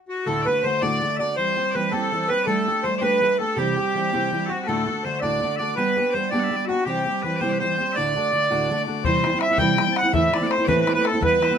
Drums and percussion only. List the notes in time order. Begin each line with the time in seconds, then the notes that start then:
9.05 bodhran
9.24 bodhran
9.41 bodhran
9.58 bodhran
9.78 bodhran
9.96 bodhran
10.14 bodhran
10.34 bodhran
10.51 bodhran
10.69 bodhran
10.87 bodhran
11.05 bodhran
11.22 bodhran
11.42 bodhran